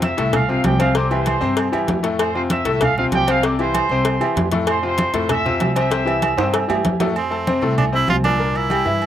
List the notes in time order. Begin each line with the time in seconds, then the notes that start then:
Already playing: F2 C3 C4 F4
0.02 E5 E6, cowbell, high conga, low timbale, low agogo
0.17 C2 A2 A3 A4, cowbell, high conga
0.33 F5, cowbell, high conga, low conga, low agogo
0.49 C3 C4 F4 F5, high conga
0.64 C2 G4 G5, cowbell, high conga, low timbale, low agogo
0.79 C3 C4 C5 F5, cowbell, high conga, low agogo
0.95 C3 C4 C5 D5 D6, cowbell, high conga
1.11 E3 E4 G4 C5 C6, high conga, low agogo
1.26 cowbell, high conga, low timbale, low agogo
1.41 G2 C3 C4 C5, high conga
1.57 cowbell, high conga, low agogo
1.72 G2 E3 E4 G4, high conga, low agogo
1.88 F2, cowbell, high conga, low timbale
2.03 A2 A3 A4, cowbell
2.19 C5 C6, cowbell, high conga, low agogo
2.35 C3 C4 F4 C5 C6, high conga
2.50 E5 E6, cowbell, high conga, low timbale, low agogo
2.65 C2 A2 A3 A4, cowbell, high conga
2.81 F5, cowbell, high conga, low conga, low agogo
2.98 C3 C4 F4 F5, high conga, low conga
3.11 C2 G4 G5, cowbell, high conga, low timbale, low agogo
3.27 C3 C4 C5 F5, cowbell, low agogo
3.43 C3 C4 C5 D5 D6, cowbell, high conga
3.59 E3 E4 G4 C5 C6, high conga, low agogo
3.74 cowbell, high conga, low timbale, low agogo
3.89 C2 C3 C4 C5, high conga
4.05 cowbell, high conga, low agogo
4.21 E2 E3 E4 G4, high conga, low agogo
4.36 F2, cowbell, high conga, low timbale
4.52 A2 A3 A4, cowbell, high conga
4.67 C5 C6, cowbell, high conga, low agogo
4.83 C3 C4 F4 C5 C6, high conga
4.98 cowbell, high conga, low timbale, low agogo
5.14 F2 A2 A3 A4, cowbell, high conga
5.29 E5 E6, cowbell, high conga, low conga, low agogo
5.45 C3 C4 F4, high conga, low conga
5.60 C2, cowbell, high conga, low timbale, low agogo
5.75 C3 C4 C5 E5 E6, cowbell, low agogo
5.90 C3 C4 C5, cowbell, high conga
6.06 E3 E4 G4, high conga, low agogo
6.22 cowbell, high conga, low timbale, low agogo
6.37 G2 C3 C4 C5, high conga, high timbale
6.54 cowbell, high conga, low agogo
6.68 G2 E3 E4 G4, high conga, low timbale, low agogo
6.85 F2, cowbell, high conga, low timbale
7.00 A2 A3 A4, cowbell, high conga, low timbale
7.16 C4, high conga, low agogo
7.30 A3 A4 A5, high conga
7.47 C3 C4 C5, high conga, low timbale, low agogo
7.62 C2 A2 A3 A4, high conga
7.78 D4, high conga, low conga, low agogo
7.92 C3 C4 E4 C5, high conga
8.08 C2 F4, high conga, low timbale, low agogo
8.24 A#2 A#3 D4 A#4, high conga, low agogo
8.39 A#2 A#3 A#4, high conga
8.55 E4, high conga, low agogo
8.70 G3 G4 G5, high conga, low timbale, low agogo
8.85 G2 E3 E4 E5, high conga
9.02 high conga, low agogo